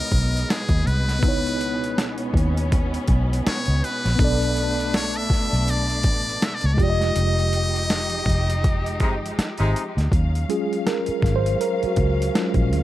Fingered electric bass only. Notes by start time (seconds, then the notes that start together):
0.12 B1
0.69 D#2
0.87 C2
1.23 C#2
2.34 D#2
3.09 B1
3.47 muted fingered electric bass stroke
3.68 C#2
4.06 A#1
4.19 B1
5.31 muted fingered electric bass stroke
5.53 B1
6.04 A1
6.64 C#2
6.79 F1
7.16 F1
8.26 F1
9.01 G1
9.38 muted fingered electric bass stroke
9.60 G#1
9.97 D2
10.12 D#2
11.08 muted fingered electric bass stroke
11.23 G#1
11.83 muted fingered electric bass stroke
11.97 C#2
12.55 A#1
12.73 D2